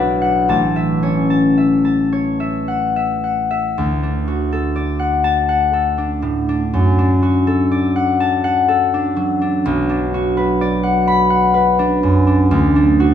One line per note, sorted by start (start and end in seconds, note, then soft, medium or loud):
0.00 0.54 B1 medium
0.00 0.54 D4 soft
0.00 0.53 B4 soft
0.00 0.54 D5 medium
0.00 0.20 F#5 medium
0.22 0.53 F#5 soft
0.49 3.81 A1 soft
0.49 1.29 A5 medium
0.76 1.56 E5 soft
1.03 3.81 C#4 soft
1.03 2.11 C#5 soft
1.30 1.83 A5 soft
1.57 2.39 E5 soft
1.85 5.23 A5 soft
2.12 3.81 C#5 soft
2.40 2.95 E5 soft
2.68 3.16 F#5 soft
2.96 3.49 E5 soft
3.24 3.69 F#5 soft
3.51 3.81 E5 soft
3.78 6.77 D2 medium
4.03 5.97 D4 soft
4.28 7.21 F#4 soft
4.52 5.72 A4 soft
4.76 7.70 D5 medium
4.99 5.48 F#5 soft
5.24 8.19 A5 medium
5.49 7.95 F#5 soft
5.73 7.46 A4 medium
5.98 6.48 D4 soft
6.22 6.77 A2 soft
6.49 6.97 D4 soft
6.73 9.69 F#2 medium
6.99 8.93 D4 soft
7.22 10.13 F#4 soft
7.47 8.67 A4 medium
7.71 10.60 D5 medium
7.96 8.43 F#5 medium
8.20 9.69 A5 medium
8.44 10.82 F#5 medium
8.68 9.69 A4 medium
8.94 9.40 D4 medium
9.16 13.06 F#3 soft
9.42 9.88 D4 medium
9.66 12.55 B1 medium
9.89 11.78 D4 soft
10.14 12.99 F#4 medium
10.37 11.53 B4 medium
10.61 13.14 D5 medium
10.83 11.29 F#5 medium
11.07 13.14 B5 medium
11.30 13.14 F#5 medium
11.54 13.14 B4 medium
11.79 12.26 D4 medium
12.03 12.55 F#2 soft
12.27 12.75 D4 medium
12.51 13.14 D2 medium
12.76 13.14 D4 medium
13.00 13.14 F#4 medium